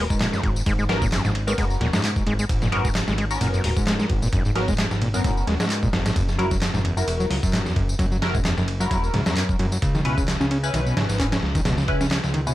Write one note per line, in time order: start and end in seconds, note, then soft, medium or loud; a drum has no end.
0.00 0.87 B3 medium
0.00 0.87 C#4 medium
0.00 0.87 F#4 medium
0.00 0.87 A#4 medium
0.10 0.40 G#2 loud
0.10 kick medium
0.10 tambourine medium
0.20 0.27 A#2 loud
0.20 snare loud
0.20 clap loud
0.20 ride medium
0.20 tambourine medium
0.33 0.42 F#2 medium
0.33 snare soft
0.33 tambourine soft
0.43 0.62 G#1 loud
0.43 0.50 G#2 medium
0.43 kick loud
0.43 ride medium
0.56 tambourine medium
0.66 1.21 G#1 loud
0.66 0.73 G#3 loud
0.66 kick loud
0.66 ride medium
0.66 tambourine medium
0.79 0.84 G#3 medium
0.79 tambourine soft
0.89 1.03 B3 medium
0.89 1.03 C#4 medium
0.89 1.03 F#4 medium
0.89 1.03 A#4 loud
0.89 snare loud
0.89 ride medium
1.02 1.07 A#2 loud
1.02 kick loud
1.02 tambourine medium
1.12 1.23 F#2 medium
1.12 snare loud
1.12 clap loud
1.12 ride medium
1.12 tambourine medium
1.25 1.55 G#1 medium
1.25 1.30 G#2 medium
1.25 snare soft
1.25 tambourine soft
1.35 ride medium
1.47 1.53 G#3 loud
1.47 2.70 B3 medium
1.47 2.70 C#4 medium
1.47 2.70 F#4 medium
1.47 2.70 A#4 medium
1.47 tambourine medium
1.58 1.77 F#1 medium
1.58 1.65 G#3 medium
1.58 kick loud
1.58 ride medium
1.58 tambourine medium
1.70 tambourine soft
1.81 1.91 D#1 medium
1.81 1.88 A#2 loud
1.81 snare soft
1.81 ride medium
1.93 2.02 F#2 medium
1.93 2.23 G#2 loud
1.93 snare loud
1.93 tambourine medium
2.04 2.11 G#2 medium
2.04 clap loud
2.04 ride medium
2.04 tambourine medium
2.16 kick loud
2.16 tambourine soft
2.26 2.46 G#1 loud
2.26 2.34 G#3 loud
2.26 ride medium
2.39 2.45 G#3 medium
2.39 tambourine medium
2.49 3.04 G#1 loud
2.49 kick loud
2.49 ride medium
2.49 tambourine medium
2.62 2.68 A#2 loud
2.62 snare soft
2.62 tambourine soft
2.72 2.83 F#2 medium
2.72 2.87 B3 medium
2.72 2.87 C#4 medium
2.72 2.87 F#4 medium
2.72 2.87 A#4 loud
2.72 ride medium
2.85 2.91 G#2 medium
2.85 kick loud
2.85 tambourine medium
2.95 snare loud
2.95 clap loud
2.95 ride medium
2.95 tambourine medium
3.08 3.38 G#1 medium
3.08 3.14 G#3 loud
3.08 snare medium
3.08 tambourine soft
3.18 3.25 G#3 medium
3.18 ride medium
3.31 4.53 B3 medium
3.31 4.53 C#4 medium
3.31 4.53 F#4 medium
3.31 4.53 A#4 medium
3.31 tambourine medium
3.41 3.60 F#1 medium
3.41 3.48 A#2 loud
3.41 ride medium
3.41 tambourine medium
3.54 3.62 F#2 medium
3.54 tambourine soft
3.64 3.74 D#1 medium
3.64 3.71 G#2 medium
3.64 open hi-hat medium
3.76 4.07 G#2 loud
3.76 kick loud
3.76 tambourine medium
3.87 3.94 G#3 loud
3.87 snare loud
3.87 clap loud
3.87 ride medium
3.87 tambourine medium
3.99 4.05 G#3 medium
3.99 snare soft
3.99 tambourine soft
4.10 4.29 G#1 medium
4.10 kick loud
4.10 ride medium
4.22 4.28 A#2 loud
4.22 tambourine medium
4.33 4.87 G#1 loud
4.33 4.43 F#2 medium
4.33 kick loud
4.33 ride medium
4.33 tambourine medium
4.45 4.51 G#2 medium
4.45 tambourine soft
4.56 4.70 B3 medium
4.56 4.70 C#4 medium
4.56 4.70 F#4 medium
4.56 4.70 A#4 loud
4.56 snare soft
4.56 ride medium
4.68 4.74 G#3 loud
4.68 kick medium
4.68 tambourine medium
4.78 4.86 G#3 medium
4.78 snare loud
4.78 clap loud
4.78 ride medium
4.78 tambourine medium
4.91 5.21 G#1 medium
4.91 snare soft
4.91 tambourine soft
5.02 5.08 A#2 loud
5.02 ride medium
5.14 5.22 F#2 medium
5.14 6.15 B3 medium
5.14 6.15 C#4 medium
5.14 6.15 F#4 medium
5.14 6.15 A#4 medium
5.14 tambourine medium
5.24 5.43 F#1 medium
5.24 5.31 G#2 medium
5.24 kick loud
5.24 ride medium
5.24 tambourine medium
5.37 tambourine soft
5.47 5.57 D#1 medium
5.47 5.54 G#3 loud
5.47 snare medium
5.47 ride medium
5.60 5.90 G#2 loud
5.60 5.65 G#3 medium
5.60 snare loud
5.60 tambourine medium
5.70 clap loud
5.70 ride medium
5.70 tambourine medium
5.83 5.88 A#2 loud
5.83 kick medium
5.83 tambourine soft
5.93 6.12 G#1 medium
5.93 6.03 F#2 medium
5.93 snare loud
5.93 ride medium
6.06 6.11 G#2 medium
6.06 snare loud
6.06 ride medium
6.06 tambourine medium
6.16 6.71 F#1 loud
6.16 6.23 F#2 medium
6.16 kick loud
6.16 ride medium
6.16 tambourine medium
6.29 snare soft
6.29 tambourine soft
6.39 6.46 F#3 loud
6.39 6.53 E4 medium
6.39 6.53 F#4 medium
6.39 6.53 A#4 loud
6.39 ride medium
6.51 6.57 F#3 medium
6.51 kick loud
6.51 tambourine medium
6.62 snare loud
6.62 clap loud
6.62 ride medium
6.62 tambourine medium
6.74 7.04 F#1 medium
6.74 6.80 G#2 loud
6.74 snare medium
6.74 tambourine soft
6.84 6.95 E2 medium
6.84 ride medium
6.97 7.03 F#2 medium
6.97 8.19 E4 medium
6.97 8.19 F#4 medium
6.97 8.19 A#4 medium
6.97 tambourine medium
7.07 7.27 E1 medium
7.07 ride medium
7.07 tambourine medium
7.20 7.26 F#3 loud
7.20 tambourine soft
7.30 7.41 C#2 medium
7.30 7.37 F#3 medium
7.30 open hi-hat medium
7.43 7.73 F#2 loud
7.43 kick medium
7.43 tambourine medium
7.53 7.60 G#2 loud
7.53 snare loud
7.53 clap loud
7.53 ride medium
7.53 tambourine medium
7.66 7.74 E2 medium
7.66 snare soft
7.66 tambourine soft
7.76 7.95 F#1 loud
7.76 7.83 F#2 medium
7.76 kick loud
7.76 ride medium
7.89 tambourine medium
7.99 8.54 F#1 loud
7.99 8.06 F#3 loud
7.99 kick loud
7.99 ride medium
7.99 tambourine medium
8.12 8.17 F#3 medium
8.12 tambourine soft
8.22 8.36 E4 medium
8.22 8.36 F#4 medium
8.22 8.36 A#4 loud
8.22 snare loud
8.22 ride medium
8.35 8.40 G#2 loud
8.35 kick loud
8.35 tambourine medium
8.45 8.55 E2 medium
8.45 snare loud
8.45 clap loud
8.45 ride medium
8.45 tambourine medium
8.57 8.88 F#1 loud
8.57 8.63 F#2 medium
8.57 snare soft
8.57 tambourine soft
8.68 ride medium
8.80 8.86 F#3 loud
8.80 9.81 E4 medium
8.80 9.81 F#4 medium
8.80 9.81 A#4 medium
8.80 tambourine medium
8.91 9.10 E1 medium
8.91 8.98 F#3 medium
8.91 kick loud
8.91 ride medium
8.91 tambourine medium
9.04 tambourine soft
9.13 9.24 C#2 medium
9.13 9.21 G#2 loud
9.13 snare soft
9.13 ride medium
9.26 9.35 E2 medium
9.26 9.56 F#2 loud
9.26 snare loud
9.26 tambourine medium
9.36 9.43 F#2 medium
9.36 clap loud
9.36 ride medium
9.36 tambourine medium
9.49 kick medium
9.49 tambourine soft
9.59 9.78 F#1 loud
9.59 9.66 F#3 medium
9.59 ride medium
9.72 9.78 F#3 medium
9.72 tambourine medium
9.82 10.37 C#2 loud
9.82 kick loud
9.82 ride medium
9.82 tambourine medium
9.95 10.01 D#3 loud
9.95 snare soft
9.95 tambourine soft
10.05 10.16 B2 medium
10.05 10.20 C#4 medium
10.05 10.20 E4 medium
10.05 10.20 B4 loud
10.05 ride medium
10.18 10.23 C#3 medium
10.18 kick loud
10.18 tambourine medium
10.28 snare loud
10.28 clap loud
10.28 ride medium
10.28 tambourine medium
10.40 10.71 C#2 medium
10.40 10.46 C#4 loud
10.40 snare medium
10.40 tambourine soft
10.51 10.58 C#4 medium
10.51 ride medium
10.63 11.86 C#4 medium
10.63 11.86 E4 medium
10.63 11.86 B4 medium
10.63 tambourine medium
10.74 10.93 B1 loud
10.74 10.81 D#3 loud
10.74 ride medium
10.74 tambourine medium
10.86 10.95 B2 medium
10.86 tambourine soft
10.96 11.07 G#1 medium
10.96 11.04 C#3 medium
10.96 snare loud
10.96 ride medium
11.09 11.39 G#1 loud
11.09 snare soft
11.09 tambourine medium
11.19 11.27 C#4 loud
11.19 kick medium
11.19 clap loud
11.19 ride medium
11.19 tambourine medium
11.32 11.38 C#4 medium
11.32 snare loud
11.32 ride medium
11.32 tambourine soft
11.43 11.62 C#2 loud
11.43 snare soft
11.55 11.61 D#3 loud
11.55 kick medium
11.55 ride medium
11.55 tambourine medium
11.65 12.20 C#2 loud
11.65 11.76 B2 medium
11.65 snare loud
11.65 ride medium
11.65 tambourine medium
11.78 11.84 C#3 medium
11.78 snare soft
11.78 tambourine soft
11.88 12.03 C#4 medium
11.88 12.03 E4 medium
11.88 12.03 B4 loud
11.88 kick medium
11.88 ride medium
12.01 12.07 C#4 loud
12.01 snare soft
12.01 tambourine medium
12.11 12.18 C#4 medium
12.11 snare loud
12.11 clap loud
12.11 ride medium
12.11 tambourine medium
12.24 12.54 C#2 medium
12.24 snare soft
12.24 tambourine soft
12.34 12.41 D#3 loud
12.34 ride medium
12.47 12.54 B2 medium
12.47 12.54 C#4 medium
12.47 12.54 E4 medium
12.47 12.54 B4 medium
12.47 tambourine medium